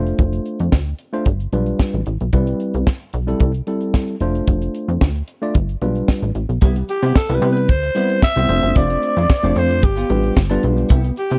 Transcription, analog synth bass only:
0, 0, Header, 1, 2, 480
1, 0, Start_track
1, 0, Key_signature, 0, "major"
1, 0, Tempo, 535714
1, 170, Time_signature, 4, 2, 24, 8
1, 10202, End_track
2, 0, Start_track
2, 0, Title_t, "Analog synth bass"
2, 0, Program_c, 0, 38
2, 0, Note_on_c, 0, 29, 93
2, 121, Note_off_c, 0, 29, 0
2, 167, Note_on_c, 0, 29, 109
2, 361, Note_off_c, 0, 29, 0
2, 538, Note_on_c, 0, 41, 85
2, 628, Note_off_c, 0, 41, 0
2, 650, Note_on_c, 0, 38, 84
2, 842, Note_off_c, 0, 38, 0
2, 1130, Note_on_c, 0, 31, 101
2, 1322, Note_off_c, 0, 31, 0
2, 1367, Note_on_c, 0, 35, 84
2, 1561, Note_off_c, 0, 35, 0
2, 1736, Note_on_c, 0, 33, 82
2, 1827, Note_off_c, 0, 33, 0
2, 1851, Note_on_c, 0, 33, 88
2, 1952, Note_off_c, 0, 33, 0
2, 1979, Note_on_c, 0, 35, 80
2, 2068, Note_off_c, 0, 35, 0
2, 2090, Note_on_c, 0, 36, 93
2, 2282, Note_off_c, 0, 36, 0
2, 2458, Note_on_c, 0, 36, 93
2, 2548, Note_off_c, 0, 36, 0
2, 2810, Note_on_c, 0, 35, 97
2, 3002, Note_off_c, 0, 35, 0
2, 3050, Note_on_c, 0, 36, 95
2, 3242, Note_off_c, 0, 36, 0
2, 3768, Note_on_c, 0, 29, 88
2, 3961, Note_off_c, 0, 29, 0
2, 4010, Note_on_c, 0, 29, 103
2, 4202, Note_off_c, 0, 29, 0
2, 4375, Note_on_c, 0, 41, 84
2, 4466, Note_off_c, 0, 41, 0
2, 4493, Note_on_c, 0, 38, 91
2, 4684, Note_off_c, 0, 38, 0
2, 4973, Note_on_c, 0, 31, 97
2, 5164, Note_off_c, 0, 31, 0
2, 5210, Note_on_c, 0, 35, 85
2, 5402, Note_off_c, 0, 35, 0
2, 5576, Note_on_c, 0, 33, 81
2, 5667, Note_off_c, 0, 33, 0
2, 5689, Note_on_c, 0, 33, 80
2, 5792, Note_off_c, 0, 33, 0
2, 5815, Note_on_c, 0, 35, 73
2, 5906, Note_off_c, 0, 35, 0
2, 5931, Note_on_c, 0, 36, 114
2, 6123, Note_off_c, 0, 36, 0
2, 6296, Note_on_c, 0, 48, 94
2, 6387, Note_off_c, 0, 48, 0
2, 6536, Note_on_c, 0, 36, 103
2, 6627, Note_off_c, 0, 36, 0
2, 6647, Note_on_c, 0, 48, 109
2, 6890, Note_on_c, 0, 38, 100
2, 6904, Note_off_c, 0, 48, 0
2, 7082, Note_off_c, 0, 38, 0
2, 7495, Note_on_c, 0, 36, 86
2, 7586, Note_off_c, 0, 36, 0
2, 7608, Note_on_c, 0, 29, 107
2, 7711, Note_off_c, 0, 29, 0
2, 7731, Note_on_c, 0, 31, 92
2, 7824, Note_off_c, 0, 31, 0
2, 7849, Note_on_c, 0, 29, 114
2, 8042, Note_off_c, 0, 29, 0
2, 8214, Note_on_c, 0, 41, 94
2, 8305, Note_off_c, 0, 41, 0
2, 8453, Note_on_c, 0, 29, 110
2, 8545, Note_off_c, 0, 29, 0
2, 8565, Note_on_c, 0, 41, 99
2, 8810, Note_on_c, 0, 31, 108
2, 8823, Note_off_c, 0, 41, 0
2, 9002, Note_off_c, 0, 31, 0
2, 9048, Note_on_c, 0, 33, 102
2, 9241, Note_off_c, 0, 33, 0
2, 9288, Note_on_c, 0, 31, 97
2, 9481, Note_off_c, 0, 31, 0
2, 9529, Note_on_c, 0, 35, 100
2, 9722, Note_off_c, 0, 35, 0
2, 9769, Note_on_c, 0, 36, 114
2, 9961, Note_off_c, 0, 36, 0
2, 10137, Note_on_c, 0, 48, 79
2, 10202, Note_off_c, 0, 48, 0
2, 10202, End_track
0, 0, End_of_file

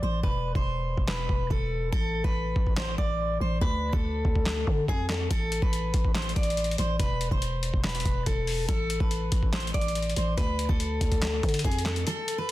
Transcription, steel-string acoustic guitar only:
0, 0, Header, 1, 2, 480
1, 0, Start_track
1, 0, Key_signature, 0, "minor"
1, 0, Tempo, 422535
1, 268, Time_signature, 4, 2, 24, 8
1, 14217, End_track
2, 0, Start_track
2, 0, Title_t, "Steel-string acoustic guitar"
2, 0, Program_c, 0, 25
2, 32, Note_on_c, 0, 72, 87
2, 237, Note_off_c, 0, 72, 0
2, 265, Note_on_c, 0, 71, 95
2, 605, Note_off_c, 0, 71, 0
2, 631, Note_on_c, 0, 72, 84
2, 1193, Note_off_c, 0, 72, 0
2, 1224, Note_on_c, 0, 71, 89
2, 1677, Note_off_c, 0, 71, 0
2, 1711, Note_on_c, 0, 69, 78
2, 2161, Note_off_c, 0, 69, 0
2, 2186, Note_on_c, 0, 69, 103
2, 2525, Note_off_c, 0, 69, 0
2, 2547, Note_on_c, 0, 71, 75
2, 3111, Note_off_c, 0, 71, 0
2, 3152, Note_on_c, 0, 72, 83
2, 3357, Note_off_c, 0, 72, 0
2, 3386, Note_on_c, 0, 74, 88
2, 3838, Note_off_c, 0, 74, 0
2, 3876, Note_on_c, 0, 72, 76
2, 4079, Note_off_c, 0, 72, 0
2, 4105, Note_on_c, 0, 71, 109
2, 4444, Note_off_c, 0, 71, 0
2, 4459, Note_on_c, 0, 69, 81
2, 5498, Note_off_c, 0, 69, 0
2, 5553, Note_on_c, 0, 68, 90
2, 5757, Note_off_c, 0, 68, 0
2, 5788, Note_on_c, 0, 69, 77
2, 5995, Note_off_c, 0, 69, 0
2, 6034, Note_on_c, 0, 69, 109
2, 6369, Note_off_c, 0, 69, 0
2, 6386, Note_on_c, 0, 71, 77
2, 6951, Note_off_c, 0, 71, 0
2, 6986, Note_on_c, 0, 72, 84
2, 7193, Note_off_c, 0, 72, 0
2, 7228, Note_on_c, 0, 74, 76
2, 7679, Note_off_c, 0, 74, 0
2, 7711, Note_on_c, 0, 72, 92
2, 7916, Note_off_c, 0, 72, 0
2, 7945, Note_on_c, 0, 71, 93
2, 8285, Note_off_c, 0, 71, 0
2, 8311, Note_on_c, 0, 72, 84
2, 8874, Note_off_c, 0, 72, 0
2, 8904, Note_on_c, 0, 71, 91
2, 9357, Note_off_c, 0, 71, 0
2, 9391, Note_on_c, 0, 69, 79
2, 9840, Note_off_c, 0, 69, 0
2, 9866, Note_on_c, 0, 69, 105
2, 10205, Note_off_c, 0, 69, 0
2, 10227, Note_on_c, 0, 71, 78
2, 10791, Note_off_c, 0, 71, 0
2, 10830, Note_on_c, 0, 72, 83
2, 11036, Note_off_c, 0, 72, 0
2, 11065, Note_on_c, 0, 74, 90
2, 11518, Note_off_c, 0, 74, 0
2, 11557, Note_on_c, 0, 72, 77
2, 11760, Note_off_c, 0, 72, 0
2, 11784, Note_on_c, 0, 71, 107
2, 12124, Note_off_c, 0, 71, 0
2, 12140, Note_on_c, 0, 69, 85
2, 13179, Note_off_c, 0, 69, 0
2, 13235, Note_on_c, 0, 68, 91
2, 13439, Note_off_c, 0, 68, 0
2, 13470, Note_on_c, 0, 69, 79
2, 13676, Note_off_c, 0, 69, 0
2, 13714, Note_on_c, 0, 69, 105
2, 14049, Note_off_c, 0, 69, 0
2, 14066, Note_on_c, 0, 71, 78
2, 14217, Note_off_c, 0, 71, 0
2, 14217, End_track
0, 0, End_of_file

